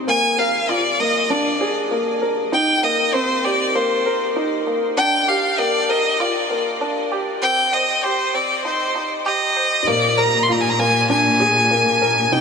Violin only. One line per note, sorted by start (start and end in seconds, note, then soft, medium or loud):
0.09 0.40 G#5 loud
0.39 0.71 F5 medium
0.69 1.01 D5 medium
1.00 1.32 D#5 medium
1.30 1.76 D5 medium
2.53 2.85 G5 loud
2.83 3.15 D#5 medium
3.14 3.46 C5 loud
3.44 3.76 D5 medium
3.75 4.21 C5 medium
4.97 5.30 G5 loud
5.28 5.61 F5 loud
5.59 5.91 D5 loud
5.90 6.22 D#5 loud
6.20 6.66 D5 medium
7.43 7.74 G5 loud
7.73 8.05 D#5 loud
8.04 8.36 C5 loud
8.34 8.64 D5 medium
8.65 9.07 C5 medium
9.26 9.89 D#5 loud
9.87 10.19 D5 loud
10.18 10.44 A#5 loud
10.43 10.53 C6 loud
10.52 10.62 A#5 medium
10.61 10.71 G#5 medium
10.70 10.81 A#5 medium
10.79 11.09 G#5 loud
11.10 12.34 G#5 loud
12.33 12.41 G5 loud